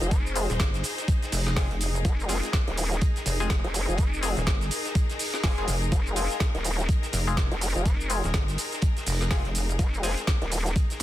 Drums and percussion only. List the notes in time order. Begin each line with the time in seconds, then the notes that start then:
0.01 closed hi-hat, shaker
0.11 kick, closed hi-hat, shaker
0.26 shaker
0.35 closed hi-hat, open hi-hat, shaker
0.50 snare, closed hi-hat, shaker
0.59 kick, snare, closed hi-hat, shaker
0.74 snare, closed hi-hat, shaker
0.83 closed hi-hat, open hi-hat, shaker
0.98 snare, closed hi-hat, shaker
1.08 kick, closed hi-hat, shaker
1.22 snare, closed hi-hat, shaker
1.32 open hi-hat, shaker
1.47 snare, closed hi-hat, shaker
1.56 kick, snare, open hi-hat, shaker
1.71 snare, closed hi-hat
1.80 closed hi-hat, open hi-hat, shaker
1.95 closed hi-hat, shaker
2.05 kick, closed hi-hat, shaker
2.20 closed hi-hat, shaker
2.28 closed hi-hat, open hi-hat, shaker
2.43 snare, closed hi-hat, shaker
2.52 kick, snare, closed hi-hat, shaker
2.68 snare, closed hi-hat
2.77 closed hi-hat, open hi-hat, shaker
2.92 snare, closed hi-hat, shaker
3.01 kick, closed hi-hat, shaker
3.16 snare, closed hi-hat, shaker
3.26 closed hi-hat, open hi-hat, shaker
3.40 closed hi-hat, shaker
3.50 kick, snare, closed hi-hat, shaker
3.64 snare, closed hi-hat
3.74 snare, closed hi-hat, open hi-hat, shaker
3.89 closed hi-hat, shaker
3.97 kick, closed hi-hat, shaker
4.14 shaker
4.23 closed hi-hat, open hi-hat, shaker
4.37 snare, closed hi-hat, shaker
4.47 kick, snare, closed hi-hat, shaker
4.61 snare, closed hi-hat, shaker
4.71 closed hi-hat, open hi-hat, shaker
4.85 snare, closed hi-hat, shaker
4.95 kick, closed hi-hat, shaker
5.10 snare, closed hi-hat, shaker
5.19 open hi-hat, shaker
5.34 snare, shaker
5.44 kick, snare, open hi-hat, shaker
5.58 snare, closed hi-hat
5.67 closed hi-hat, open hi-hat, shaker
5.82 closed hi-hat, shaker
5.92 kick, closed hi-hat, shaker
6.06 closed hi-hat, shaker
6.16 closed hi-hat, open hi-hat, shaker
6.30 snare, closed hi-hat, shaker
6.40 kick, snare, closed hi-hat, shaker
6.54 snare, closed hi-hat
6.64 closed hi-hat, open hi-hat, shaker
6.79 snare, closed hi-hat, shaker
6.89 kick, closed hi-hat, shaker
7.02 snare, closed hi-hat, shaker
7.13 closed hi-hat, open hi-hat, shaker
7.27 closed hi-hat, shaker
7.37 kick, snare, closed hi-hat, shaker
7.52 snare, closed hi-hat
7.61 snare, closed hi-hat, open hi-hat, shaker
7.76 closed hi-hat, shaker
7.86 kick, closed hi-hat, shaker
8.01 shaker
8.09 closed hi-hat, open hi-hat, shaker
8.24 snare, closed hi-hat, shaker
8.34 kick, snare, closed hi-hat, shaker
8.48 snare, closed hi-hat, shaker
8.58 closed hi-hat, open hi-hat, shaker
8.72 snare, closed hi-hat, shaker
8.82 kick, closed hi-hat, shaker
8.97 snare, closed hi-hat, shaker
9.06 open hi-hat, shaker
9.21 snare, closed hi-hat, shaker
9.30 kick, snare, open hi-hat, shaker
9.45 snare, closed hi-hat
9.55 closed hi-hat, open hi-hat, shaker
9.69 closed hi-hat, shaker
9.79 kick, closed hi-hat, shaker
9.94 closed hi-hat, shaker
10.03 closed hi-hat, open hi-hat, shaker
10.17 snare, closed hi-hat, shaker
10.27 kick, snare, closed hi-hat, shaker
10.42 snare, closed hi-hat
10.51 closed hi-hat, open hi-hat, shaker
10.66 snare, closed hi-hat, shaker
10.76 kick, closed hi-hat, shaker
10.90 snare, closed hi-hat, shaker
11.00 closed hi-hat